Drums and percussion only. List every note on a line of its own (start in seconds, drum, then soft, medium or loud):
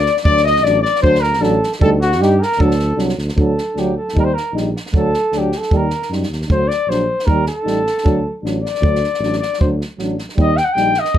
0.06 snare soft
0.17 snare soft
0.25 kick loud
0.37 snare soft
0.47 snare soft
0.56 snare soft
0.66 snare soft
0.85 snare soft
0.96 snare soft
1.04 kick medium
1.15 snare soft
1.23 snare soft
1.33 snare soft
1.43 snare soft
1.63 snare soft
1.72 snare soft
1.81 kick medium
2.01 snare soft
2.12 snare soft
2.22 snare soft
2.42 snare soft
2.52 snare soft
2.60 kick medium
2.71 snare soft
2.79 snare soft
2.99 snare soft
3.09 snare soft
3.18 snare soft
3.28 snare soft
3.38 kick medium
3.58 snare soft
3.77 snare soft
4.08 snare soft
4.17 kick medium
4.37 snare soft
4.57 snare soft
4.76 snare soft
4.86 snare soft
4.94 kick medium
5.14 snare soft
5.32 snare soft
5.52 snare soft
5.62 snare soft
5.71 kick medium
5.90 snare soft
6.02 snare soft
6.12 snare soft
6.23 snare soft
6.32 snare soft
6.42 snare soft
6.50 kick medium
6.71 snare soft
6.91 snare soft
7.19 snare soft
7.28 kick medium
7.46 snare soft
7.67 snare soft
7.87 snare soft
7.98 snare soft
8.06 kick medium
8.46 snare soft
8.66 snare soft
8.75 snare soft
8.83 kick medium
8.95 snare soft
9.04 snare soft
9.14 snare soft
9.23 snare soft
9.33 snare soft
9.42 snare soft
9.53 snare soft
9.61 kick medium
9.81 snare soft
9.99 snare soft
10.18 snare soft
10.29 snare soft
10.38 kick medium
10.57 snare soft
10.77 snare soft
10.94 snare soft
11.05 snare soft
11.15 kick medium